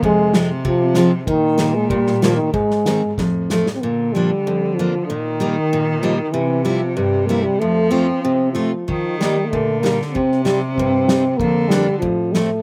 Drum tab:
HH |--p---p-|--p---p-|--p---p-|--------|
SD |--o---o-|--o--oo-|-oo-o-oo|--------|
BD |o---o---|o---o---|o---o---|--------|

HH |--------|--------|--------|--------|
SD |--------|--------|--------|--o---oo|
BD |--------|--------|--------|o---o---|

HH |--------|--------|
SD |-oo---o-|--o---o-|
BD |o---o---|o---o---|